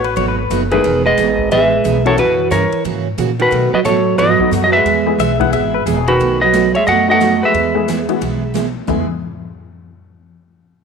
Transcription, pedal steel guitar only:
0.05 0.16 B4 medium
0.17 0.28 C#5 medium
0.28 0.37 B4 medium
0.38 0.60 B4 medium
5.20 5.40 E5 medium
5.41 5.53 F#5 medium
5.53 5.73 E5 medium
5.74 5.86 B4 medium
5.86 6.12 G#4 loud

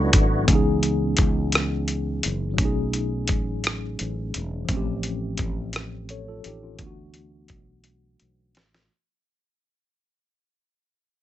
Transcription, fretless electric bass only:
0.14 0.45 G#1 medium
0.49 1.15 C#2 loud
1.19 2.20 C#2 medium
2.26 2.59 F#1 medium
2.59 3.30 B1 medium
3.30 3.95 A1 medium
4.01 4.32 A1 medium
4.36 4.66 E1 medium
4.69 5.35 A1 medium
5.40 6.41 A1 medium
6.46 6.77 A1 medium
6.80 7.46 D2 medium
7.51 8.16 B1 medium
8.22 8.57 B1 medium
8.57 8.88 A1 medium

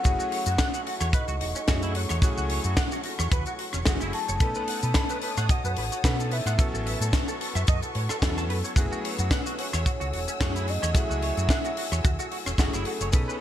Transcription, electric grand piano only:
0.03 1.65 F#3 medium
0.03 1.65 A3 medium
0.03 1.65 C#4 medium
0.03 1.65 E4 medium
0.03 1.66 G#4 loud
1.68 2.19 F#3 medium
1.68 2.19 A3 medium
1.68 2.20 C#4 medium
1.68 2.19 E4 medium
1.68 2.20 G#4 medium
2.22 3.83 F#3 medium
2.22 3.83 A3 medium
2.22 3.83 C#4 medium
2.22 3.84 E4 medium
2.22 3.84 G#4 loud
3.86 4.38 F#3 medium
3.86 4.38 A3 medium
3.86 4.38 C#4 medium
3.86 4.38 E4 medium
3.86 4.38 G#4 medium
4.40 6.01 A3 medium
4.40 6.01 B3 medium
4.40 6.01 C#4 medium
4.40 6.02 D#4 medium
4.40 6.02 A4 loud
6.04 6.56 B3 medium
6.04 6.56 C#4 medium
6.04 6.56 D#4 medium
6.04 6.56 A4 medium
6.58 8.19 F#3 medium
6.58 8.19 B3 medium
6.58 8.20 C#4 medium
6.58 8.20 E4 medium
6.58 8.20 A4 loud
8.23 8.74 F#3 medium
8.23 8.74 B3 medium
8.23 8.74 C#4 medium
8.23 8.74 E4 medium
8.23 8.75 A4 medium
8.77 10.37 F#3 medium
8.77 10.38 A3 medium
8.77 10.38 C#4 medium
8.77 10.38 E4 medium
8.77 10.38 G#4 loud
10.40 10.92 F#3 medium
10.40 10.92 A3 medium
10.40 10.92 C#4 medium
10.40 10.92 E4 medium
10.40 10.92 G#4 medium
10.94 12.55 F#3 medium
10.94 12.55 A3 medium
10.94 12.56 C#4 medium
10.94 12.56 E4 medium
10.94 12.56 G#4 loud
12.58 13.10 F#3 medium
12.58 13.10 A3 medium
12.58 13.10 C#4 medium
12.58 13.11 E4 medium
12.58 13.11 G#4 medium
13.12 13.41 B3 medium
13.12 13.41 C#4 medium
13.12 13.41 D#4 medium
13.12 13.41 G#4 medium
13.12 13.41 A4 loud

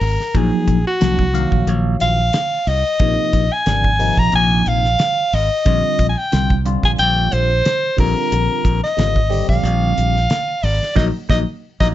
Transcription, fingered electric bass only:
0.01 0.16 G#1 loud
0.35 0.50 A#1 loud
0.68 0.83 A#1 medium
1.02 1.45 C2 medium
1.52 1.65 A#1 medium
1.67 1.95 A#1 medium
2.01 2.29 A#1 medium
2.67 2.82 C2 medium
3.00 3.15 A#1 medium
3.33 3.49 A#1 medium
3.67 4.10 G#1 medium
4.17 4.31 A#1 medium
4.33 4.61 A#1 medium
4.67 4.95 A#1 medium
5.33 5.48 G#1 loud
5.66 5.81 A#1 loud
5.99 6.14 A#1 medium
6.33 6.76 C2 medium
6.83 6.97 A#1 medium
6.99 7.27 A#1 medium
7.33 7.61 A#1 medium
7.98 8.13 A#1 medium
8.32 8.47 A#1 medium
8.65 8.80 A#1 medium
8.98 9.41 G#1 medium
9.49 9.62 A#1 medium
9.63 9.92 A#1 loud
9.98 10.26 A#1 medium
10.63 10.79 G#1 medium
10.96 11.10 A#1 medium
11.29 11.43 A#1 medium
11.80 11.92 A#1 medium

